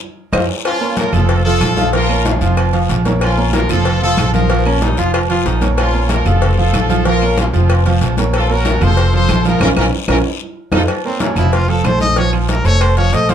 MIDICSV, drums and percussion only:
0, 0, Header, 1, 2, 480
1, 0, Start_track
1, 0, Key_signature, -5, "minor"
1, 0, Tempo, 319829
1, 985, Time_signature, 4, 2, 24, 8
1, 20027, End_track
2, 0, Start_track
2, 0, Title_t, "Drums"
2, 489, Note_on_c, 9, 63, 102
2, 492, Note_on_c, 9, 74, 101
2, 499, Note_on_c, 9, 56, 99
2, 499, Note_on_c, 9, 65, 106
2, 501, Note_on_c, 9, 75, 112
2, 639, Note_off_c, 9, 63, 0
2, 642, Note_off_c, 9, 74, 0
2, 649, Note_off_c, 9, 56, 0
2, 649, Note_off_c, 9, 65, 0
2, 651, Note_off_c, 9, 75, 0
2, 968, Note_on_c, 9, 63, 39
2, 974, Note_on_c, 9, 68, 105
2, 977, Note_on_c, 9, 75, 62
2, 980, Note_on_c, 9, 56, 109
2, 1118, Note_off_c, 9, 63, 0
2, 1124, Note_off_c, 9, 68, 0
2, 1127, Note_off_c, 9, 75, 0
2, 1130, Note_off_c, 9, 56, 0
2, 1209, Note_on_c, 9, 63, 35
2, 1359, Note_off_c, 9, 63, 0
2, 1454, Note_on_c, 9, 63, 101
2, 1457, Note_on_c, 9, 56, 71
2, 1457, Note_on_c, 9, 68, 96
2, 1460, Note_on_c, 9, 73, 76
2, 1604, Note_off_c, 9, 63, 0
2, 1607, Note_off_c, 9, 56, 0
2, 1607, Note_off_c, 9, 68, 0
2, 1610, Note_off_c, 9, 73, 0
2, 1690, Note_on_c, 9, 63, 34
2, 1690, Note_on_c, 9, 64, 77
2, 1691, Note_on_c, 9, 68, 109
2, 1695, Note_on_c, 9, 75, 55
2, 1706, Note_on_c, 9, 73, 80
2, 1840, Note_off_c, 9, 63, 0
2, 1840, Note_off_c, 9, 64, 0
2, 1841, Note_off_c, 9, 68, 0
2, 1845, Note_off_c, 9, 75, 0
2, 1856, Note_off_c, 9, 73, 0
2, 1934, Note_on_c, 9, 56, 120
2, 1935, Note_on_c, 9, 68, 81
2, 1937, Note_on_c, 9, 63, 34
2, 1941, Note_on_c, 9, 74, 66
2, 2084, Note_off_c, 9, 56, 0
2, 2085, Note_off_c, 9, 68, 0
2, 2087, Note_off_c, 9, 63, 0
2, 2091, Note_off_c, 9, 74, 0
2, 2177, Note_on_c, 9, 63, 39
2, 2327, Note_off_c, 9, 63, 0
2, 2416, Note_on_c, 9, 56, 74
2, 2419, Note_on_c, 9, 68, 110
2, 2420, Note_on_c, 9, 63, 88
2, 2420, Note_on_c, 9, 73, 81
2, 2420, Note_on_c, 9, 75, 77
2, 2566, Note_off_c, 9, 56, 0
2, 2569, Note_off_c, 9, 68, 0
2, 2570, Note_off_c, 9, 63, 0
2, 2570, Note_off_c, 9, 73, 0
2, 2570, Note_off_c, 9, 75, 0
2, 2654, Note_on_c, 9, 63, 102
2, 2656, Note_on_c, 9, 73, 75
2, 2804, Note_off_c, 9, 63, 0
2, 2806, Note_off_c, 9, 73, 0
2, 2893, Note_on_c, 9, 63, 35
2, 2898, Note_on_c, 9, 74, 82
2, 2900, Note_on_c, 9, 56, 111
2, 2906, Note_on_c, 9, 68, 89
2, 3043, Note_off_c, 9, 63, 0
2, 3048, Note_off_c, 9, 74, 0
2, 3050, Note_off_c, 9, 56, 0
2, 3056, Note_off_c, 9, 68, 0
2, 3139, Note_on_c, 9, 75, 56
2, 3142, Note_on_c, 9, 68, 112
2, 3144, Note_on_c, 9, 63, 36
2, 3289, Note_off_c, 9, 75, 0
2, 3292, Note_off_c, 9, 68, 0
2, 3294, Note_off_c, 9, 63, 0
2, 3380, Note_on_c, 9, 73, 75
2, 3383, Note_on_c, 9, 63, 102
2, 3388, Note_on_c, 9, 56, 83
2, 3530, Note_off_c, 9, 73, 0
2, 3533, Note_off_c, 9, 63, 0
2, 3538, Note_off_c, 9, 56, 0
2, 3618, Note_on_c, 9, 73, 72
2, 3619, Note_on_c, 9, 63, 37
2, 3627, Note_on_c, 9, 68, 85
2, 3768, Note_off_c, 9, 73, 0
2, 3769, Note_off_c, 9, 63, 0
2, 3777, Note_off_c, 9, 68, 0
2, 3859, Note_on_c, 9, 56, 104
2, 3864, Note_on_c, 9, 75, 73
2, 3867, Note_on_c, 9, 74, 73
2, 3868, Note_on_c, 9, 68, 118
2, 3870, Note_on_c, 9, 63, 33
2, 4009, Note_off_c, 9, 56, 0
2, 4014, Note_off_c, 9, 75, 0
2, 4017, Note_off_c, 9, 74, 0
2, 4018, Note_off_c, 9, 68, 0
2, 4020, Note_off_c, 9, 63, 0
2, 4102, Note_on_c, 9, 56, 67
2, 4111, Note_on_c, 9, 63, 37
2, 4252, Note_off_c, 9, 56, 0
2, 4261, Note_off_c, 9, 63, 0
2, 4343, Note_on_c, 9, 56, 71
2, 4350, Note_on_c, 9, 73, 73
2, 4352, Note_on_c, 9, 63, 35
2, 4354, Note_on_c, 9, 66, 77
2, 4354, Note_on_c, 9, 68, 85
2, 4493, Note_off_c, 9, 56, 0
2, 4500, Note_off_c, 9, 73, 0
2, 4502, Note_off_c, 9, 63, 0
2, 4504, Note_off_c, 9, 66, 0
2, 4504, Note_off_c, 9, 68, 0
2, 4582, Note_on_c, 9, 56, 67
2, 4588, Note_on_c, 9, 63, 96
2, 4588, Note_on_c, 9, 68, 78
2, 4588, Note_on_c, 9, 73, 76
2, 4732, Note_off_c, 9, 56, 0
2, 4738, Note_off_c, 9, 63, 0
2, 4738, Note_off_c, 9, 68, 0
2, 4738, Note_off_c, 9, 73, 0
2, 4821, Note_on_c, 9, 56, 109
2, 4828, Note_on_c, 9, 74, 76
2, 4829, Note_on_c, 9, 63, 33
2, 4830, Note_on_c, 9, 68, 106
2, 4833, Note_on_c, 9, 75, 71
2, 4971, Note_off_c, 9, 56, 0
2, 4978, Note_off_c, 9, 74, 0
2, 4980, Note_off_c, 9, 63, 0
2, 4980, Note_off_c, 9, 68, 0
2, 4983, Note_off_c, 9, 75, 0
2, 5065, Note_on_c, 9, 63, 33
2, 5215, Note_off_c, 9, 63, 0
2, 5300, Note_on_c, 9, 63, 110
2, 5305, Note_on_c, 9, 56, 75
2, 5307, Note_on_c, 9, 73, 79
2, 5314, Note_on_c, 9, 68, 93
2, 5450, Note_off_c, 9, 63, 0
2, 5455, Note_off_c, 9, 56, 0
2, 5457, Note_off_c, 9, 73, 0
2, 5464, Note_off_c, 9, 68, 0
2, 5542, Note_on_c, 9, 73, 82
2, 5545, Note_on_c, 9, 63, 36
2, 5545, Note_on_c, 9, 64, 80
2, 5552, Note_on_c, 9, 68, 99
2, 5557, Note_on_c, 9, 75, 65
2, 5692, Note_off_c, 9, 73, 0
2, 5695, Note_off_c, 9, 63, 0
2, 5695, Note_off_c, 9, 64, 0
2, 5702, Note_off_c, 9, 68, 0
2, 5708, Note_off_c, 9, 75, 0
2, 5777, Note_on_c, 9, 63, 35
2, 5783, Note_on_c, 9, 56, 111
2, 5786, Note_on_c, 9, 74, 72
2, 5796, Note_on_c, 9, 68, 77
2, 5927, Note_off_c, 9, 63, 0
2, 5933, Note_off_c, 9, 56, 0
2, 5936, Note_off_c, 9, 74, 0
2, 5946, Note_off_c, 9, 68, 0
2, 6025, Note_on_c, 9, 63, 36
2, 6175, Note_off_c, 9, 63, 0
2, 6261, Note_on_c, 9, 63, 92
2, 6265, Note_on_c, 9, 56, 70
2, 6274, Note_on_c, 9, 73, 76
2, 6275, Note_on_c, 9, 68, 115
2, 6281, Note_on_c, 9, 75, 76
2, 6412, Note_off_c, 9, 63, 0
2, 6415, Note_off_c, 9, 56, 0
2, 6424, Note_off_c, 9, 73, 0
2, 6425, Note_off_c, 9, 68, 0
2, 6431, Note_off_c, 9, 75, 0
2, 6507, Note_on_c, 9, 73, 79
2, 6508, Note_on_c, 9, 63, 95
2, 6657, Note_off_c, 9, 73, 0
2, 6658, Note_off_c, 9, 63, 0
2, 6748, Note_on_c, 9, 56, 106
2, 6750, Note_on_c, 9, 74, 78
2, 6752, Note_on_c, 9, 68, 85
2, 6756, Note_on_c, 9, 63, 33
2, 6898, Note_off_c, 9, 56, 0
2, 6900, Note_off_c, 9, 74, 0
2, 6902, Note_off_c, 9, 68, 0
2, 6906, Note_off_c, 9, 63, 0
2, 6994, Note_on_c, 9, 68, 111
2, 6998, Note_on_c, 9, 75, 64
2, 6999, Note_on_c, 9, 63, 31
2, 7144, Note_off_c, 9, 68, 0
2, 7148, Note_off_c, 9, 75, 0
2, 7150, Note_off_c, 9, 63, 0
2, 7225, Note_on_c, 9, 73, 70
2, 7234, Note_on_c, 9, 63, 99
2, 7235, Note_on_c, 9, 56, 78
2, 7375, Note_off_c, 9, 73, 0
2, 7384, Note_off_c, 9, 63, 0
2, 7385, Note_off_c, 9, 56, 0
2, 7465, Note_on_c, 9, 73, 75
2, 7475, Note_on_c, 9, 63, 31
2, 7478, Note_on_c, 9, 68, 93
2, 7616, Note_off_c, 9, 73, 0
2, 7625, Note_off_c, 9, 63, 0
2, 7628, Note_off_c, 9, 68, 0
2, 7713, Note_on_c, 9, 56, 124
2, 7713, Note_on_c, 9, 68, 106
2, 7713, Note_on_c, 9, 74, 73
2, 7720, Note_on_c, 9, 75, 72
2, 7863, Note_off_c, 9, 56, 0
2, 7863, Note_off_c, 9, 68, 0
2, 7863, Note_off_c, 9, 74, 0
2, 7870, Note_off_c, 9, 75, 0
2, 7952, Note_on_c, 9, 56, 73
2, 7952, Note_on_c, 9, 63, 37
2, 8102, Note_off_c, 9, 56, 0
2, 8102, Note_off_c, 9, 63, 0
2, 8192, Note_on_c, 9, 56, 73
2, 8194, Note_on_c, 9, 73, 75
2, 8197, Note_on_c, 9, 66, 79
2, 8197, Note_on_c, 9, 68, 87
2, 8342, Note_off_c, 9, 56, 0
2, 8344, Note_off_c, 9, 73, 0
2, 8347, Note_off_c, 9, 66, 0
2, 8347, Note_off_c, 9, 68, 0
2, 8422, Note_on_c, 9, 63, 82
2, 8426, Note_on_c, 9, 73, 65
2, 8434, Note_on_c, 9, 56, 66
2, 8434, Note_on_c, 9, 68, 83
2, 8572, Note_off_c, 9, 63, 0
2, 8576, Note_off_c, 9, 73, 0
2, 8584, Note_off_c, 9, 56, 0
2, 8584, Note_off_c, 9, 68, 0
2, 8663, Note_on_c, 9, 63, 36
2, 8666, Note_on_c, 9, 74, 76
2, 8668, Note_on_c, 9, 68, 115
2, 8673, Note_on_c, 9, 56, 107
2, 8676, Note_on_c, 9, 75, 63
2, 8813, Note_off_c, 9, 63, 0
2, 8816, Note_off_c, 9, 74, 0
2, 8818, Note_off_c, 9, 68, 0
2, 8823, Note_off_c, 9, 56, 0
2, 8827, Note_off_c, 9, 75, 0
2, 9143, Note_on_c, 9, 63, 98
2, 9146, Note_on_c, 9, 73, 80
2, 9150, Note_on_c, 9, 68, 98
2, 9157, Note_on_c, 9, 56, 82
2, 9293, Note_off_c, 9, 63, 0
2, 9296, Note_off_c, 9, 73, 0
2, 9300, Note_off_c, 9, 68, 0
2, 9307, Note_off_c, 9, 56, 0
2, 9385, Note_on_c, 9, 73, 79
2, 9388, Note_on_c, 9, 63, 34
2, 9388, Note_on_c, 9, 64, 85
2, 9390, Note_on_c, 9, 68, 115
2, 9395, Note_on_c, 9, 75, 55
2, 9535, Note_off_c, 9, 73, 0
2, 9538, Note_off_c, 9, 63, 0
2, 9538, Note_off_c, 9, 64, 0
2, 9540, Note_off_c, 9, 68, 0
2, 9545, Note_off_c, 9, 75, 0
2, 9626, Note_on_c, 9, 68, 72
2, 9626, Note_on_c, 9, 74, 71
2, 9630, Note_on_c, 9, 63, 35
2, 9630, Note_on_c, 9, 64, 67
2, 9634, Note_on_c, 9, 56, 117
2, 9776, Note_off_c, 9, 74, 0
2, 9777, Note_off_c, 9, 68, 0
2, 9780, Note_off_c, 9, 63, 0
2, 9780, Note_off_c, 9, 64, 0
2, 9784, Note_off_c, 9, 56, 0
2, 9871, Note_on_c, 9, 63, 37
2, 10021, Note_off_c, 9, 63, 0
2, 10110, Note_on_c, 9, 73, 72
2, 10111, Note_on_c, 9, 56, 68
2, 10111, Note_on_c, 9, 63, 87
2, 10112, Note_on_c, 9, 68, 107
2, 10114, Note_on_c, 9, 75, 74
2, 10260, Note_off_c, 9, 73, 0
2, 10261, Note_off_c, 9, 56, 0
2, 10261, Note_off_c, 9, 63, 0
2, 10262, Note_off_c, 9, 68, 0
2, 10264, Note_off_c, 9, 75, 0
2, 10342, Note_on_c, 9, 63, 90
2, 10352, Note_on_c, 9, 73, 71
2, 10492, Note_off_c, 9, 63, 0
2, 10502, Note_off_c, 9, 73, 0
2, 10586, Note_on_c, 9, 56, 109
2, 10586, Note_on_c, 9, 63, 37
2, 10586, Note_on_c, 9, 68, 90
2, 10594, Note_on_c, 9, 74, 79
2, 10736, Note_off_c, 9, 56, 0
2, 10736, Note_off_c, 9, 63, 0
2, 10736, Note_off_c, 9, 68, 0
2, 10744, Note_off_c, 9, 74, 0
2, 10824, Note_on_c, 9, 68, 103
2, 10833, Note_on_c, 9, 75, 55
2, 10834, Note_on_c, 9, 63, 35
2, 10974, Note_off_c, 9, 68, 0
2, 10983, Note_off_c, 9, 75, 0
2, 10984, Note_off_c, 9, 63, 0
2, 11068, Note_on_c, 9, 63, 96
2, 11068, Note_on_c, 9, 73, 76
2, 11073, Note_on_c, 9, 56, 74
2, 11218, Note_off_c, 9, 63, 0
2, 11218, Note_off_c, 9, 73, 0
2, 11223, Note_off_c, 9, 56, 0
2, 11304, Note_on_c, 9, 63, 32
2, 11309, Note_on_c, 9, 68, 91
2, 11310, Note_on_c, 9, 73, 68
2, 11454, Note_off_c, 9, 63, 0
2, 11459, Note_off_c, 9, 68, 0
2, 11460, Note_off_c, 9, 73, 0
2, 11545, Note_on_c, 9, 68, 126
2, 11550, Note_on_c, 9, 56, 122
2, 11550, Note_on_c, 9, 63, 37
2, 11554, Note_on_c, 9, 74, 70
2, 11554, Note_on_c, 9, 75, 68
2, 11695, Note_off_c, 9, 68, 0
2, 11700, Note_off_c, 9, 56, 0
2, 11700, Note_off_c, 9, 63, 0
2, 11704, Note_off_c, 9, 74, 0
2, 11704, Note_off_c, 9, 75, 0
2, 11785, Note_on_c, 9, 63, 40
2, 11795, Note_on_c, 9, 56, 78
2, 11935, Note_off_c, 9, 63, 0
2, 11945, Note_off_c, 9, 56, 0
2, 12024, Note_on_c, 9, 63, 37
2, 12029, Note_on_c, 9, 56, 71
2, 12029, Note_on_c, 9, 66, 81
2, 12029, Note_on_c, 9, 68, 89
2, 12029, Note_on_c, 9, 73, 82
2, 12174, Note_off_c, 9, 63, 0
2, 12179, Note_off_c, 9, 56, 0
2, 12179, Note_off_c, 9, 66, 0
2, 12179, Note_off_c, 9, 68, 0
2, 12179, Note_off_c, 9, 73, 0
2, 12263, Note_on_c, 9, 63, 86
2, 12268, Note_on_c, 9, 68, 75
2, 12274, Note_on_c, 9, 73, 79
2, 12276, Note_on_c, 9, 56, 72
2, 12413, Note_off_c, 9, 63, 0
2, 12419, Note_off_c, 9, 68, 0
2, 12424, Note_off_c, 9, 73, 0
2, 12426, Note_off_c, 9, 56, 0
2, 12503, Note_on_c, 9, 63, 35
2, 12505, Note_on_c, 9, 68, 99
2, 12511, Note_on_c, 9, 56, 123
2, 12512, Note_on_c, 9, 74, 77
2, 12514, Note_on_c, 9, 75, 68
2, 12653, Note_off_c, 9, 63, 0
2, 12655, Note_off_c, 9, 68, 0
2, 12661, Note_off_c, 9, 56, 0
2, 12663, Note_off_c, 9, 74, 0
2, 12664, Note_off_c, 9, 75, 0
2, 12749, Note_on_c, 9, 63, 34
2, 12899, Note_off_c, 9, 63, 0
2, 12983, Note_on_c, 9, 63, 103
2, 12988, Note_on_c, 9, 68, 100
2, 12989, Note_on_c, 9, 56, 81
2, 12992, Note_on_c, 9, 73, 74
2, 13134, Note_off_c, 9, 63, 0
2, 13138, Note_off_c, 9, 68, 0
2, 13139, Note_off_c, 9, 56, 0
2, 13143, Note_off_c, 9, 73, 0
2, 13224, Note_on_c, 9, 63, 33
2, 13224, Note_on_c, 9, 64, 84
2, 13227, Note_on_c, 9, 68, 104
2, 13227, Note_on_c, 9, 73, 72
2, 13231, Note_on_c, 9, 75, 63
2, 13374, Note_off_c, 9, 63, 0
2, 13374, Note_off_c, 9, 64, 0
2, 13377, Note_off_c, 9, 68, 0
2, 13377, Note_off_c, 9, 73, 0
2, 13381, Note_off_c, 9, 75, 0
2, 13460, Note_on_c, 9, 74, 72
2, 13461, Note_on_c, 9, 63, 34
2, 13465, Note_on_c, 9, 56, 115
2, 13468, Note_on_c, 9, 68, 77
2, 13610, Note_off_c, 9, 74, 0
2, 13611, Note_off_c, 9, 63, 0
2, 13615, Note_off_c, 9, 56, 0
2, 13618, Note_off_c, 9, 68, 0
2, 13705, Note_on_c, 9, 63, 34
2, 13855, Note_off_c, 9, 63, 0
2, 13940, Note_on_c, 9, 56, 75
2, 13942, Note_on_c, 9, 63, 88
2, 13945, Note_on_c, 9, 75, 73
2, 13946, Note_on_c, 9, 73, 79
2, 13949, Note_on_c, 9, 66, 74
2, 13949, Note_on_c, 9, 68, 108
2, 14090, Note_off_c, 9, 56, 0
2, 14092, Note_off_c, 9, 63, 0
2, 14095, Note_off_c, 9, 75, 0
2, 14096, Note_off_c, 9, 73, 0
2, 14099, Note_off_c, 9, 66, 0
2, 14099, Note_off_c, 9, 68, 0
2, 14179, Note_on_c, 9, 63, 87
2, 14181, Note_on_c, 9, 73, 72
2, 14329, Note_off_c, 9, 63, 0
2, 14331, Note_off_c, 9, 73, 0
2, 14413, Note_on_c, 9, 63, 112
2, 14419, Note_on_c, 9, 65, 105
2, 14420, Note_on_c, 9, 74, 106
2, 14420, Note_on_c, 9, 75, 94
2, 14423, Note_on_c, 9, 56, 111
2, 14563, Note_off_c, 9, 63, 0
2, 14569, Note_off_c, 9, 65, 0
2, 14570, Note_off_c, 9, 74, 0
2, 14570, Note_off_c, 9, 75, 0
2, 14573, Note_off_c, 9, 56, 0
2, 14651, Note_on_c, 9, 63, 89
2, 14656, Note_on_c, 9, 74, 97
2, 14657, Note_on_c, 9, 75, 94
2, 14661, Note_on_c, 9, 65, 98
2, 14663, Note_on_c, 9, 56, 110
2, 14801, Note_off_c, 9, 63, 0
2, 14806, Note_off_c, 9, 74, 0
2, 14807, Note_off_c, 9, 75, 0
2, 14811, Note_off_c, 9, 65, 0
2, 14813, Note_off_c, 9, 56, 0
2, 15127, Note_on_c, 9, 63, 96
2, 15131, Note_on_c, 9, 75, 81
2, 15138, Note_on_c, 9, 56, 109
2, 15143, Note_on_c, 9, 65, 101
2, 15277, Note_off_c, 9, 63, 0
2, 15281, Note_off_c, 9, 75, 0
2, 15288, Note_off_c, 9, 56, 0
2, 15293, Note_off_c, 9, 65, 0
2, 16083, Note_on_c, 9, 63, 116
2, 16091, Note_on_c, 9, 74, 102
2, 16092, Note_on_c, 9, 56, 99
2, 16096, Note_on_c, 9, 75, 91
2, 16097, Note_on_c, 9, 65, 100
2, 16233, Note_off_c, 9, 63, 0
2, 16241, Note_off_c, 9, 74, 0
2, 16242, Note_off_c, 9, 56, 0
2, 16246, Note_off_c, 9, 75, 0
2, 16247, Note_off_c, 9, 65, 0
2, 16331, Note_on_c, 9, 56, 104
2, 16331, Note_on_c, 9, 63, 30
2, 16332, Note_on_c, 9, 74, 73
2, 16333, Note_on_c, 9, 68, 98
2, 16343, Note_on_c, 9, 75, 66
2, 16481, Note_off_c, 9, 56, 0
2, 16481, Note_off_c, 9, 63, 0
2, 16483, Note_off_c, 9, 68, 0
2, 16483, Note_off_c, 9, 74, 0
2, 16493, Note_off_c, 9, 75, 0
2, 16571, Note_on_c, 9, 63, 32
2, 16721, Note_off_c, 9, 63, 0
2, 16813, Note_on_c, 9, 63, 104
2, 16813, Note_on_c, 9, 73, 73
2, 16815, Note_on_c, 9, 56, 81
2, 16818, Note_on_c, 9, 68, 84
2, 16963, Note_off_c, 9, 73, 0
2, 16964, Note_off_c, 9, 63, 0
2, 16966, Note_off_c, 9, 56, 0
2, 16969, Note_off_c, 9, 68, 0
2, 17050, Note_on_c, 9, 63, 32
2, 17050, Note_on_c, 9, 64, 80
2, 17053, Note_on_c, 9, 73, 73
2, 17055, Note_on_c, 9, 68, 110
2, 17057, Note_on_c, 9, 75, 64
2, 17200, Note_off_c, 9, 63, 0
2, 17200, Note_off_c, 9, 64, 0
2, 17203, Note_off_c, 9, 73, 0
2, 17205, Note_off_c, 9, 68, 0
2, 17207, Note_off_c, 9, 75, 0
2, 17288, Note_on_c, 9, 63, 33
2, 17293, Note_on_c, 9, 74, 70
2, 17294, Note_on_c, 9, 68, 76
2, 17304, Note_on_c, 9, 56, 110
2, 17438, Note_off_c, 9, 63, 0
2, 17443, Note_off_c, 9, 74, 0
2, 17445, Note_off_c, 9, 68, 0
2, 17454, Note_off_c, 9, 56, 0
2, 17531, Note_on_c, 9, 63, 39
2, 17681, Note_off_c, 9, 63, 0
2, 17771, Note_on_c, 9, 63, 87
2, 17774, Note_on_c, 9, 73, 69
2, 17775, Note_on_c, 9, 56, 68
2, 17777, Note_on_c, 9, 66, 73
2, 17777, Note_on_c, 9, 68, 102
2, 17782, Note_on_c, 9, 75, 76
2, 17922, Note_off_c, 9, 63, 0
2, 17924, Note_off_c, 9, 73, 0
2, 17925, Note_off_c, 9, 56, 0
2, 17927, Note_off_c, 9, 66, 0
2, 17927, Note_off_c, 9, 68, 0
2, 17932, Note_off_c, 9, 75, 0
2, 18010, Note_on_c, 9, 63, 91
2, 18015, Note_on_c, 9, 73, 74
2, 18160, Note_off_c, 9, 63, 0
2, 18165, Note_off_c, 9, 73, 0
2, 18248, Note_on_c, 9, 63, 31
2, 18254, Note_on_c, 9, 56, 110
2, 18259, Note_on_c, 9, 74, 74
2, 18263, Note_on_c, 9, 68, 85
2, 18398, Note_off_c, 9, 63, 0
2, 18404, Note_off_c, 9, 56, 0
2, 18409, Note_off_c, 9, 74, 0
2, 18413, Note_off_c, 9, 68, 0
2, 18497, Note_on_c, 9, 63, 33
2, 18502, Note_on_c, 9, 68, 103
2, 18505, Note_on_c, 9, 75, 57
2, 18647, Note_off_c, 9, 63, 0
2, 18652, Note_off_c, 9, 68, 0
2, 18655, Note_off_c, 9, 75, 0
2, 18739, Note_on_c, 9, 73, 74
2, 18740, Note_on_c, 9, 63, 85
2, 18743, Note_on_c, 9, 56, 76
2, 18889, Note_off_c, 9, 73, 0
2, 18890, Note_off_c, 9, 63, 0
2, 18893, Note_off_c, 9, 56, 0
2, 18980, Note_on_c, 9, 68, 87
2, 18983, Note_on_c, 9, 63, 30
2, 18983, Note_on_c, 9, 73, 72
2, 19130, Note_off_c, 9, 68, 0
2, 19133, Note_off_c, 9, 63, 0
2, 19133, Note_off_c, 9, 73, 0
2, 19222, Note_on_c, 9, 68, 109
2, 19224, Note_on_c, 9, 56, 111
2, 19229, Note_on_c, 9, 63, 31
2, 19229, Note_on_c, 9, 74, 73
2, 19231, Note_on_c, 9, 75, 63
2, 19372, Note_off_c, 9, 68, 0
2, 19374, Note_off_c, 9, 56, 0
2, 19379, Note_off_c, 9, 63, 0
2, 19379, Note_off_c, 9, 74, 0
2, 19381, Note_off_c, 9, 75, 0
2, 19466, Note_on_c, 9, 56, 72
2, 19471, Note_on_c, 9, 63, 37
2, 19616, Note_off_c, 9, 56, 0
2, 19621, Note_off_c, 9, 63, 0
2, 19704, Note_on_c, 9, 56, 64
2, 19707, Note_on_c, 9, 73, 75
2, 19709, Note_on_c, 9, 68, 83
2, 19712, Note_on_c, 9, 63, 35
2, 19854, Note_off_c, 9, 56, 0
2, 19857, Note_off_c, 9, 73, 0
2, 19859, Note_off_c, 9, 68, 0
2, 19863, Note_off_c, 9, 63, 0
2, 19946, Note_on_c, 9, 68, 70
2, 19947, Note_on_c, 9, 56, 66
2, 19947, Note_on_c, 9, 73, 71
2, 19952, Note_on_c, 9, 63, 87
2, 20027, Note_off_c, 9, 56, 0
2, 20027, Note_off_c, 9, 63, 0
2, 20027, Note_off_c, 9, 68, 0
2, 20027, Note_off_c, 9, 73, 0
2, 20027, End_track
0, 0, End_of_file